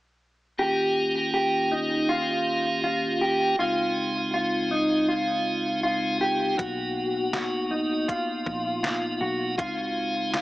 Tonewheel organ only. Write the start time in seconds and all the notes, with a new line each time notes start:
0.58 D#3 A#3 C#4 F4 G4
3.60 C#3 G#3 C4 D#4 F4
6.58 A#3 B3
9.58 C#3 G#3 C4 D#4 F4